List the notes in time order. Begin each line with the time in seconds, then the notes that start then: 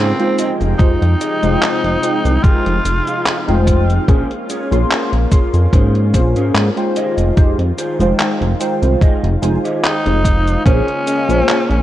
Already playing: G#2 C#3 G#3 A#3 C4 C#4 F4 G#4 C5
0.19 G#3 D#4 F4 C5 G5, closed hi-hat
0.38 C3 F3 D#4 F4 G4 G#4 D#5 G5, closed hi-hat, cabasa
0.61 F1, closed hi-hat, cabasa
0.78 F2 G#3 D#4 F4 G4 C5, kick, closed hi-hat, cabasa
1.02 F2, closed hi-hat
1.20 F4 G4 G#4 D#5, closed hi-hat, cabasa
1.42 F1 G#3 D#4 F4 C5 G5, closed hi-hat, cabasa
1.62 clap, closed hi-hat, cabasa
1.84 F1, muted clean electric guitar stroke, closed hi-hat
2.02 G#3 D#4 F4 C5 G5, closed hi-hat, cabasa
2.25 C2, closed hi-hat, cabasa
2.43 F4 G4 G#4 A#4, kick, closed hi-hat, cabasa
2.66 F1, closed hi-hat
2.85 F1, closed hi-hat, cabasa
3.07 F4 G4 G#4 F5, closed hi-hat, cabasa
3.26 clap, closed hi-hat, cabasa
3.47 F1 G#3 D#4 F4 C5 G5, closed hi-hat
3.67 muted clean electric guitar stroke, kick, closed hi-hat, cabasa
3.90 closed hi-hat, cabasa
4.07 A#1 A#3 C#4 F4 G#4 A#4 C5, kick, closed hi-hat, cabasa
4.31 closed hi-hat
4.50 C#4 G#4 A#4 C#5, closed hi-hat, cabasa
4.71 A#1 A#3 C#4 F4 G#4 C6, closed hi-hat, cabasa
4.91 clap, closed hi-hat, cabasa
5.12 A#1, muted clean electric guitar stroke, closed hi-hat
5.30 A#3 C#4 F4 G#4 C6, kick, closed hi-hat, cabasa
5.54 F2, closed hi-hat, cabasa
5.73 G#2 C#4 G#4 A#4 C5, kick, closed hi-hat, cabasa
5.95 closed hi-hat
6.13 A#1 A#3 C#4 F4 G#4 C5, kick, closed hi-hat, cabasa
6.36 G#2 C#4 G#4 A#4 C5, closed hi-hat, cabasa
6.54 G#2, clap, closed hi-hat, cabasa
6.76 G#3 D#4 F4 C5 G5, closed hi-hat
6.96 D#3 F4 G4 G#4 D#5, closed hi-hat, cabasa
7.17 F1, closed hi-hat, cabasa
7.36 F2 G#3 D#4 F4 G4 C5, kick, closed hi-hat, cabasa
7.58 F2, closed hi-hat
7.77 F4 G4 G#4 C5, closed hi-hat, cabasa
7.99 F1 G#3 D#4 F4 C5 G5, closed hi-hat, cabasa
8.19 clap, closed hi-hat, cabasa
8.41 F1, muted clean electric guitar stroke, closed hi-hat
8.59 G#3 D#4 F4 C5 G5, closed hi-hat, cabasa
8.82 C2, closed hi-hat, cabasa
9.01 F4 G4 G#4 D#5, kick, closed hi-hat, cabasa
9.23 F1, closed hi-hat
9.41 F1 G#3 D#4 F4 C5 G#5, closed hi-hat, cabasa
9.64 F4 G4 G#4 D#5, closed hi-hat, cabasa
9.84 D#4 G5, clap, closed hi-hat, cabasa
10.05 F1 G#3 D#4 F4 C5 D#5, closed hi-hat
10.24 D#5, muted clean electric guitar stroke, kick, closed hi-hat, cabasa
10.48 closed hi-hat, cabasa
10.65 A#1 C#3 G#3 A#3 C#4 F4 G#4 A#4 C5, kick, closed hi-hat, cabasa
10.88 closed hi-hat
11.06 C#4 G#4 A#4 D#5, closed hi-hat, cabasa
11.28 A#1 A#3 C#4 F4 G#4 C5, closed hi-hat, cabasa
11.49 clap, closed hi-hat, cabasa
11.70 A#1, closed hi-hat